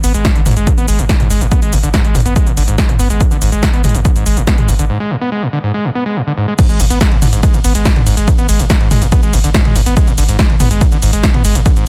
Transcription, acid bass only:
0.04 B3
0.14 G#3
0.25 G#2
0.35 D3
0.46 G#2
0.56 G#3
0.67 G#2
0.78 B3
0.88 G#3
0.99 G#2
1.09 D3
1.20 G#2
1.30 G#3
1.41 G#2
1.52 B3
1.62 G#3
1.73 G#2
1.83 D3
1.94 G#2
2.04 G#3
2.15 G#2
2.25 B3
2.36 G#3
2.47 G#2
2.57 D3
2.68 G#2
2.78 G#3
2.89 G#2
2.99 B3
3.10 G#3
3.21 G#2
3.31 D3
3.42 G#2
3.52 G#3
3.63 G#2
3.73 B3
3.84 G#3
3.95 G#2
4.05 D3
4.16 G#2
4.26 G#3
4.37 G#2
4.47 B3
4.58 G#3
4.68 G#2
4.79 D3
4.90 G#2
5.00 G#3
5.11 G#2
5.21 B3
5.32 G#3
5.42 G#2
5.53 D3
5.64 G#2
5.74 G#3
5.85 G#2
5.95 B3
6.06 G#3
6.16 G#2
6.27 D3
6.38 G#2
6.48 G#3
6.59 G#2
6.69 G#3
6.80 G#2
6.90 B3
7.01 G#3
7.12 G#2
7.22 D3
7.33 G#2
7.43 G#3
7.54 G#2
7.64 B3
7.75 G#3
7.85 G#2
7.96 D3
8.07 G#2
8.17 G#3
8.28 G#2
8.38 B3
8.49 G#3
8.59 G#2
8.70 D3
8.81 G#2
8.91 G#3
9.02 G#2
9.12 B3
9.23 G#3
9.33 G#2
9.44 D3
9.54 G#2
9.65 G#3
9.76 G#2
9.86 B3
9.97 G#3
10.07 G#2
10.18 D3
10.29 G#2
10.39 G#3
10.50 G#2
10.60 B3
10.71 G#3
10.81 G#2
10.92 D3
11.02 G#2
11.13 G#3
11.23 G#2
11.34 B3
11.45 G#3
11.55 G#2
11.66 D3
11.76 G#2

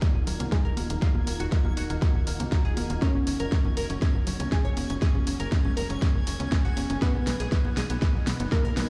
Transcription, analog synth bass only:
0.15 D#1
0.27 D#1
0.40 C#2
0.65 D#1
0.77 D#1
0.90 D#1
1.15 D#1
1.27 D#1
1.40 D#1
1.65 D#1
1.77 D#1
1.90 D#1
2.15 D#1
2.27 D#1
2.40 C#2
2.65 D#1
2.77 D#1
2.90 D#1
3.15 F#1
3.27 F#1
3.40 F#1
3.65 F#1
3.77 F#1
3.90 F#1
4.15 F#1
4.27 F#1
4.40 C#2
4.65 F#1
4.77 F#1
4.90 F#1
5.15 F#1
5.27 F#1
5.40 F#1
5.65 F#1
5.77 F#1
5.90 F#1
6.15 F#1
6.27 F#1
6.40 C#2
6.65 F#1
6.77 F#1
6.90 F#1
7.15 B1
7.27 B1
7.40 B1
7.65 B1
7.77 B1
7.90 B1
8.15 B1
8.27 B1
8.40 F#1
8.65 B1
8.77 B1

